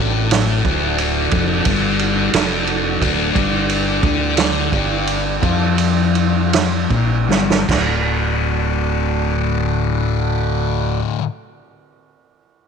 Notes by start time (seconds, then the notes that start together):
Already playing: A1 A2 D4 F#4 A4
0.31 snare, ride
0.65 D1 D2, kick, ride
0.98 ride
1.31 F1 F2, kick, ride
1.65 G1 G2, kick, ride
1.99 ride
2.33 F1 F2, snare, ride
2.67 ride
3.00 D1 D2, kick, ride
3.34 G1 G2 G3 D5, kick, ride
3.69 ride
4.03 D2 D3, kick, ride
4.37 snare, ride
4.71 G1 G2, kick, ride
5.07 ride
5.41 F2 F3 E4, kick, ride
5.78 ride
6.15 ride
6.53 snare, ride
6.89 A#1 A#2, kick, ride
7.28 G1 G2, snare
7.50 snare
7.68 D1 D2 A2 A3 F#4 D5, kick, snare, crash
7.72 D3